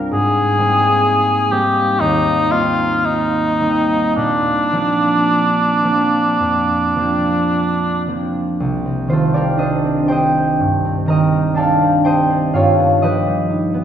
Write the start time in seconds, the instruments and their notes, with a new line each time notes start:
Already playing: harp C2 G2 G3 C4 D4 F4
0.12 harp G#2, cor anglais G#4
0.58 harp G3 A#3 C4 D#4
1.51 harp G3 A#3 C4 D#4, cor anglais G4
2.00 harp D#2, cor anglais D#4
2.50 harp G3 A#3 C4 D#4, cor anglais F4
3.05 cor anglais D#4
3.61 harp G3 A#3 C4 D#4
4.16 harp A#2, cor anglais D4
4.72 harp F3 A#3 C4 D4
5.83 harp F3 A#3 C4 D4
6.40 harp F2
6.96 harp F3 A#3 C4 D4
8.07 harp F3 A#3 C4 D4
8.60 harp C2
8.85 harp C4
9.08 harp D#3 F4 C5
9.13 harp A4
9.34 harp G3 G4 A#4 D5
9.58 harp D4 A4 D#5
9.62 harp C5
9.85 harp C4
10.06 harp D4 G4 C5 G5
10.12 harp D#5
10.35 harp C4
10.59 harp G2
10.85 harp C4
11.06 harp D#3 A#4 D#5 A#5
11.12 harp G5
11.33 harp G3
11.54 harp D4 A4 F5 A5
11.59 harp D5
11.81 harp C4
12.05 harp D4 G4 C5 D#5 G5
12.30 harp C4
12.53 harp G2 F4 A4 C#5 F5
12.79 harp B3
13.02 harp F3 G4 B4 D#5
13.26 harp G3
13.49 harp D#4
13.74 harp B3